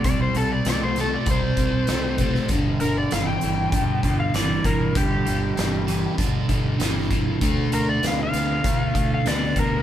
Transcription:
<<
  \new Staff \with { instrumentName = "Electric slide guitar" } { \time 4/4 \key g \mixolydian \tempo 4 = 98 d''16 c''16 a'16 d''16 d''16 c''16 a'16 d''16 c''2 | r8 bes'16 d''16 f''16 g''4. f''16 d''8 bes'8 | g'2 r2 | r8 bes'16 d''16 f''16 f''4. f''16 d''8 bes'8 | }
  \new Staff \with { instrumentName = "Overdriven electric guitar" } { \clef bass \time 4/4 \key g \mixolydian <c g>8 <c g>8 <c a>8 <c a>8 <c g>8 <c g>8 <c a>8 <c a>8 | <g, d>8 <g, d>8 <g, e>8 <g, e>8 <g, d>8 <g, d>8 <g, e>8 <g, e>8 | <g, d>8 <g, d>8 <g, e>8 <g, e>8 <g, d>8 <g, d>8 <g, e>8 <g, e>8 | <d a>8 <d a>8 <d b>8 <d b>8 <d a>8 <d a>8 <d b>8 <d b>8 | }
  \new Staff \with { instrumentName = "Fingered electric bass" } { \clef bass \time 4/4 \key g \mixolydian c,8 c,8 c,4 c,8 c,8 c,4 | g,,8 g,,8 g,,8 g,,8 g,,8 g,,8 g,,8 g,,8 | g,,8 g,,8 g,,4 g,,8 g,,8 g,,4 | d,8 d,8 d,8 d,8 d,8 d,8 d,8 d,8 | }
  \new DrumStaff \with { instrumentName = "Drums" } \drummode { \time 4/4 <hh bd>8 hh8 <hh sn>8 <hh sn>8 <hh bd>8 <hh bd>8 <hh sn>8 <hh bd>16 sn16 | <hh bd>8 hh8 <hh sn>8 hh8 <hh bd>8 <hh bd>8 <hh sn>8 <hh bd>8 | <hh bd>8 hh8 <hh sn>8 hh8 <hh bd>8 <hh bd>8 <hh sn>8 <hh bd>8 | <hh bd>8 hh8 <hh sn>8 <hh sn>8 <hh bd>8 <hh bd>8 <hh sn>8 <hh bd>8 | }
>>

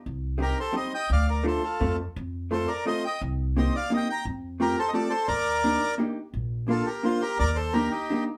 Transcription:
<<
  \new Staff \with { instrumentName = "Bandoneon" } { \time 3/4 \key f \mixolydian \tempo 4 = 172 << { r4 bes'8 c''8 ees''8 g''8 | f''8 d''8 c''8 a'4 r8 | r4 c''8 d''8 ees''8 g''8 | r4 ees''8 f''8 g''8 bes''8 |
r4 bes'8 c''16. ees''32 d''8 c''8 | d''2 r4 | r4 a'8 bes'8 c''8 bes'8 | d''8 c''8 bes'8 g'4 r8 | } \\ { r4 g'8 a'8 c''8 ees''8 | d''8 bes'8 a'8 f'4 r8 | r4 a'8 bes'8 c''8 ees''8 | r4 c''8 d''8 ees''8 g''8 |
r4 g'8 a'8 a'8 a'8 | bes'2 r4 | r4 f'8 g'8 f'8 g'8 | bes'8 a'8 g'8 ees'4 r8 | } >> }
  \new Staff \with { instrumentName = "Hollow-body jazz guitar" } { \time 3/4 \key f \mixolydian r4 <g c' ees' g'>8 r8 <g c' ees' g'>8 r8 | r4 <a d' f' a'>8 r8 <a c' f' a'>8 r8 | r4 <a c' f' a'>8 r8 <a c' f' a'>8 r8 | r4 <bes c' ees' g'>8 r8 <bes c' ees' g'>8 r8 |
r4 <a c' f' g'>8 r8 <a c' f' g'>8 r8 | r4 <bes d' ees' g'>8 r8 <bes d' ees' g'>8 r8 | r4 <bes d' f' bes'>8 r8 <bes d' f' bes'>8 r8 | r4 <bes d' ees' g'>8 r8 <bes d' ees' g'>8 r8 | }
  \new Staff \with { instrumentName = "Upright bass" } { \clef bass \time 3/4 \key f \mixolydian c,2 r4 | d,2 f,4 | f,2 r4 | c,2 r4 |
f,2 r4 | ees,2 r4 | bes,,2 r4 | ees,2 r4 | }
>>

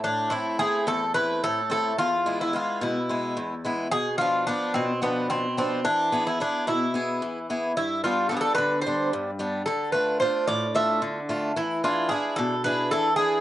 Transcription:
<<
  \new Staff \with { instrumentName = "Bouzouki" } { \time 7/8 \key a \minor \tempo 4 = 110 d'8 e'8 gis'8 a'8 b'8 a'8 a'8 | f'8. e'16 f'8 e'4. r8 | gis'8 f'8 d'8 c'8 b8 c'8 c'8 | d'8. e'16 d'8 e'4. r8 |
e'8 f'8 a'32 gis'32 a'16 b'8 c''8 r4 | a'8 b'8 c''8 d''8 e''8 r4 | e'8 f'8 gis'8 a'8 b'8 a'8 gis'8 | }
  \new Staff \with { instrumentName = "Steel-string acoustic guitar" } { \time 7/8 \key a \minor a,8 <a c' e'>8 <a c' e'>8 e,8 <a c' e'>8 a,8 <a c' e'>8 | e,8 <gis b e'>8 <gis b e'>8 b,8 <gis b e'>8 e,8 <gis b e'>8 | b,8 <f b d'>8 <f b d'>8 b,8 <f b d'>8 b,8 <f b d'>8 | e8 <b e' gis'>8 <b e' gis'>8 b,8 <b e' gis'>8 e8 <b e' gis'>8 |
g,8 <g b d'>8 <g b d'>8 d8 <g b d'>8 g,8 <g b d'>8 | d8 <a d' f'>8 <a d' f'>8 a,8 <a d' f'>8 d8 <a d' f'>8 | e8 <d' e' gis'>8 <d' e' gis'>8 b,8 <d' e' gis'>8 e8 <d' e' gis'>8 | }
>>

